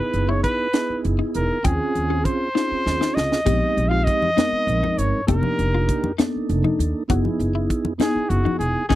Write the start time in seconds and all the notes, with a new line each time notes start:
Already playing: B3 D#4 E4 G#4 B4
0.14 F#1, closed hi-hat
0.29 E4 C#5
0.44 B4, kick, closed hi-hat
0.73 B3 D#4 E4 G#4, snare, closed hi-hat
0.89 muted upright bass stroke
1.05 F#1, closed hi-hat
1.19 D#4
1.34 E1 A#4, closed hi-hat
1.63 D#2 C4 C#4 F4 G#4 G5, kick, closed hi-hat
1.95 D#2, closed hi-hat
2.10 F4
2.25 C5, kick, closed hi-hat
2.55 C4 C#4 D#4 F4 G#4, snare
2.71 muted upright bass stroke
2.86 D#2, snare
3.01 D#4, snare
3.15 C#2 D#5, snare
3.32 snare
3.45 A#1 G#3 C4 D#4 G4, kick, closed hi-hat, splash, high conga
3.77 A#1, closed hi-hat
3.89 F4 F5
4.04 D#5, kick, closed hi-hat
4.22 low conga
4.36 G#3 C4 D#4 A#4, snare, closed hi-hat, high conga, low conga
4.52 muted upright bass stroke
4.67 A#1, closed hi-hat, low conga
4.83 D#4, low conga
4.98 G1 C#5, closed hi-hat
5.27 F1 A#3 D4 D#4 G4 A#4, kick, closed hi-hat, high conga
5.43 low conga
5.59 F1, closed hi-hat
5.74 F4
5.89 kick, closed hi-hat
6.04 low conga
6.18 A#3 D4 D#4 A4, snare, closed hi-hat, high conga, low conga
6.35 muted upright bass stroke
6.49 F1, closed hi-hat, low conga
6.64 D#4, low conga
6.79 D#2, closed hi-hat, low conga
7.08 F#1 B3 D#4 E4 F#4 G#4, kick, closed hi-hat, high conga
7.25 low conga
7.39 F#1, closed hi-hat
7.55 E4
7.70 kick, closed hi-hat
7.85 low conga
7.98 B3 D#4 E4 G#4, snare, closed hi-hat, high conga, low conga
8.15 muted upright bass stroke
8.29 F#1 F#4, closed hi-hat, low conga
8.45 D#4, low conga
8.59 E1 G#4, closed hi-hat, low conga
8.89 D#2 C#4 D#4 G#4, kick, snare, high conga